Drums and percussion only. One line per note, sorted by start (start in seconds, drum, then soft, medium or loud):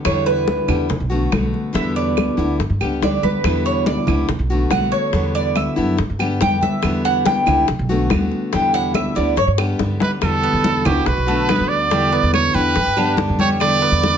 0.05 high bongo medium
0.05 high conga soft
0.05 claves medium
0.27 high bongo soft
0.27 high conga soft
0.48 high bongo medium
0.48 high conga medium
0.68 high bongo soft
0.68 low conga medium
0.68 claves medium
0.90 high bongo medium
0.90 high conga soft
0.90 low conga medium
1.11 high conga soft
1.32 high bongo medium
1.32 low bongo medium
1.32 high conga medium
1.32 claves medium
1.54 high bongo soft
1.54 high conga soft
1.75 high bongo medium
1.75 high conga soft
1.98 high conga soft
2.17 high bongo medium
2.17 high conga medium
2.17 claves medium
2.39 high bongo soft
2.39 high conga soft
2.60 high bongo medium
2.60 high conga soft
2.81 high bongo soft
2.81 high conga soft
2.81 claves medium
3.02 high bongo medium
3.02 low bongo medium
3.02 high conga medium
3.23 high bongo soft
3.23 high conga medium
3.44 high bongo medium
3.44 high conga soft
3.44 claves medium
3.66 high bongo soft
3.66 high conga soft
3.86 high bongo medium
3.86 high conga medium
4.07 high bongo soft
4.07 low conga medium
4.07 claves medium
4.29 high bongo medium
4.29 high conga soft
4.29 low conga medium
4.51 high conga soft
4.71 high bongo medium
4.71 low bongo medium
4.71 high conga medium
4.71 claves medium
4.92 high bongo soft
4.92 high conga soft
5.13 high bongo medium
5.13 high conga soft
5.36 high conga soft
5.56 high bongo medium
5.56 high conga medium
5.56 claves medium
5.77 high bongo soft
5.77 high conga soft
5.98 high bongo medium
5.98 high conga soft
6.20 high bongo soft
6.20 high conga soft
6.20 claves medium
6.41 high bongo medium
6.41 low bongo medium
6.41 high conga medium
6.61 high bongo soft
6.61 high conga medium
6.83 high bongo medium
6.83 high conga soft
6.83 claves medium
7.05 high bongo soft
7.05 high conga soft
7.25 high bongo medium
7.25 high conga medium
7.47 high bongo soft
7.47 low conga medium
7.47 claves medium
7.68 high bongo medium
7.68 high conga soft
7.89 high conga soft
8.10 high bongo medium
8.10 low bongo medium
8.10 high conga medium
8.10 claves medium
8.31 high bongo soft
8.31 high conga soft
8.52 high bongo medium
8.52 high conga soft
8.73 high conga soft
8.94 high bongo medium
8.94 high conga medium
8.94 claves medium
9.16 high bongo soft
9.16 high conga soft
9.37 high bongo medium
9.37 high conga soft
9.58 high bongo medium
9.58 high conga soft
9.58 claves medium
9.79 high bongo loud
9.79 high conga medium
10.00 low bongo loud
10.00 high conga medium
10.22 high bongo medium
10.22 high conga soft
10.22 claves medium
10.44 high bongo soft
10.44 high conga soft
10.64 high bongo medium
10.64 high conga medium
10.85 high bongo soft
10.85 low conga medium
10.85 claves medium
11.06 high bongo medium
11.06 high conga soft
11.28 high conga soft
11.49 high bongo medium
11.49 low bongo medium
11.49 high conga medium
11.49 claves medium
11.70 high bongo soft
11.70 high conga soft
11.91 high bongo medium
11.91 high conga soft
12.13 high conga soft
12.34 high bongo medium
12.34 high conga medium
12.34 claves medium
12.54 high bongo soft
12.54 high conga soft
12.76 high bongo medium
12.76 high conga soft
12.97 high bongo soft
12.97 high conga soft
12.97 claves medium
13.17 high bongo medium
13.17 low bongo medium
13.17 high conga medium
13.39 high bongo soft
13.39 high conga medium
13.60 high bongo medium
13.60 high conga soft
13.60 claves medium
13.82 high bongo soft
13.82 high conga soft
14.03 high bongo medium
14.03 high conga medium